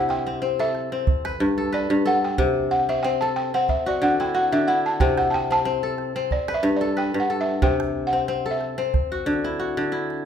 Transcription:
Already playing: C3 E4 G4 A4
0.09 G5, calabash click
0.27 C4
0.42 C4
0.59 A4 E5
0.75 calabash click
0.92 C4
1.07 calabash thump
1.25 B4, calabash click
1.40 G2
1.58 A4
1.72 B4 D5
1.90 G2, calabash click
2.05 A4 F#5
2.24 G5
2.38 C3, calabash thump
2.71 F#5, calabash click
2.89 C4 E5
3.03 C4 G5
3.21 A4 A5
3.36 G5, calabash click
3.54 C4 F#5
3.69 E5, calabash thump
3.86 F#4 D5
4.02 D3 F#5
4.20 E4 G5
4.35 F#4 F#5
4.52 D3 E5, calabash click
4.68 E4 F#5
4.86 A5
5.00 C3 G5, calabash thump
5.18 F#5, calabash click
5.30 G5 A5, calabash click
5.51 C4 A5
5.65 C4
5.83 A4
5.98 calabash click
6.16 C4
6.31 D5, calabash thump
6.48 B4, calabash click
6.54 E5
6.63 G2
6.76 D5
6.81 A4
6.97 B4 G5
7.14 G2, calabash click
7.20 F#5
7.30 A4
7.41 E5
7.62 C3 G5, calabash thump
7.80 calabash click
8.07 F#5
8.13 C4, calabash click
8.28 C4, calabash click
8.46 A4
8.51 E5
8.61 calabash click
8.78 C4, calabash click
8.94 calabash thump, calabash click
9.12 F#4
9.26 D3
9.44 E4, calabash click
9.60 F#4
9.77 D3
9.92 E4
10.10 calabash click

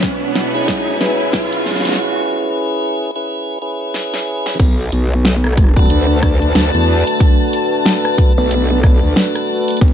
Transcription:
Already playing: B2 G#3 B3 E4 F#4 B4 C#5 E5, riser
0.03 kick, snare, closed hi-hat
0.33 G#5, snare, closed hi-hat
0.55 C#4 E4 G#4 B4
0.68 kick, snare, closed hi-hat
1.01 C#4 E4 G#4 B4, snare, closed hi-hat
1.10 closed hi-hat
1.33 kick, snare, closed hi-hat
1.53 closed hi-hat
1.66 snare
1.71 snare
1.76 snare
1.80 snare
1.85 snare, closed hi-hat
1.89 snare
1.92 snare
1.95 snare
3.16 C#4 E4 G#4 B4
3.62 C#4 E4 G#4 B4
3.94 snare
4.14 snare
4.46 snare
4.60 B1 A3 D4 F#4 B4, kick, closed hi-hat, crash
4.92 B1, closed hi-hat
5.25 snare, closed hi-hat
5.44 cross-stick
5.47 cross-stick
5.53 A5, cross-stick
5.57 kick, cross-stick, closed hi-hat
5.64 cross-stick
5.68 cross-stick
5.77 D4 F#4 A4 B4, kick
5.90 D2, closed hi-hat
6.22 D4 F#4 A4 B4, kick, cross-stick, closed hi-hat
6.42 closed hi-hat
6.55 D2, snare, closed hi-hat
6.74 E2, closed hi-hat
7.07 closed hi-hat
7.20 kick, closed hi-hat
7.53 closed hi-hat
7.86 snare, closed hi-hat
8.05 cross-stick
8.18 kick, closed hi-hat
8.38 B1 D4 F#4 A4 B4
8.51 closed hi-hat
8.83 D4 F#4 A4 B4, kick, cross-stick, closed hi-hat
9.03 D2
9.16 snare, closed hi-hat
9.35 cross-stick, closed hi-hat
9.68 closed hi-hat
9.70 closed hi-hat
9.77 closed hi-hat
9.81 B1 G#3 C#4 E4, kick, closed hi-hat
9.88 closed hi-hat

